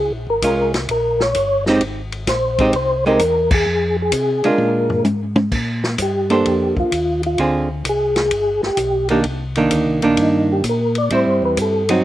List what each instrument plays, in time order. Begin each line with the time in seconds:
Already playing: tonewheel organ C#2
0.00 tonewheel organ G#4
0.11 tonewheel organ A#1
0.27 tonewheel organ G#1 A#4
0.42 tonewheel organ C2, hollow-body jazz guitar G#3 C#4 F4, kick, hi-hat pedal, ride
0.74 snare, ride
0.89 tonewheel organ A#1 A#4, kick, ride
1.20 tonewheel organ C#5, snare
1.35 tonewheel organ G1, kick, hi-hat pedal, ride
1.66 hollow-body jazz guitar G#3 C4 D#4 G4, snare
1.81 tonewheel organ G#1, kick, ride
2.12 ride
2.27 tonewheel organ A#1 C5, kick, snare, hi-hat pedal, ride
2.58 hollow-body jazz guitar G#3 C4 D#4 G4, kick, ride
2.73 tonewheel organ C2 C5, kick, ride
3.06 hollow-body jazz guitar G#3 C4 D#4 G4, tonewheel organ A#4
3.19 tonewheel organ E2, kick, hi-hat pedal, ride
3.51 tonewheel organ G#4, kick, crash
3.66 tonewheel organ F2
4.02 tonewheel organ G#4
4.12 tonewheel organ C3, kick, hi-hat pedal, ride
4.44 tonewheel organ C3 A#4, hollow-body jazz guitar G#3 D4 F4, ride
4.58 tonewheel organ A#2, high tom
4.90 floor tom
5.04 tonewheel organ G#2, hi-hat pedal, high tom
5.36 high tom
5.52 tonewheel organ A#2, kick, crash
5.84 snare
5.98 tonewheel organ G2, kick, hi-hat pedal, ride
6.02 tonewheel organ G4
6.30 hollow-body jazz guitar A#3 D4 A4 C5, ride
6.45 tonewheel organ F2, kick, ride
6.77 tonewheel organ F2 F4, kick
6.91 tonewheel organ D#2, kick, hi-hat pedal, ride
7.23 tonewheel organ F4, ride
7.38 tonewheel organ D2, hollow-body jazz guitar D3 C4 F4 G#4, kick, ride
7.85 tonewheel organ C2, kick, hi-hat pedal, ride
7.89 tonewheel organ G#4
8.16 snare, ride
8.31 tonewheel organ G1, kick, ride
8.63 tonewheel organ G1 G4, snare
8.77 tonewheel organ B1, kick, hi-hat pedal, ride
9.09 hollow-body jazz guitar D#3 A#3 D4, tonewheel organ G4, ride
9.24 tonewheel organ C2, kick, ride
9.55 hollow-body jazz guitar D#3 A#3 D4, ride
9.70 tonewheel organ D2, kick, hi-hat pedal, ride
9.86 tonewheel organ C2
10.02 tonewheel organ A#1, hollow-body jazz guitar D#3 A#3 D4, ride
10.17 tonewheel organ G2, kick, ride
10.22 tonewheel organ D#4
10.52 tonewheel organ G4
10.64 tonewheel organ A#2, kick, hi-hat pedal, ride
10.69 tonewheel organ A#4
10.95 tonewheel organ D5, ride
11.10 tonewheel organ A2, hollow-body jazz guitar G3 C4 E4, kick, ride
11.15 tonewheel organ C5
11.27 tonewheel organ G2
11.42 tonewheel organ E2 B4
11.57 tonewheel organ G2, kick, hi-hat pedal, ride
11.62 tonewheel organ A4
11.89 hollow-body jazz guitar F#3 C4 D#4, tonewheel organ F#4, ride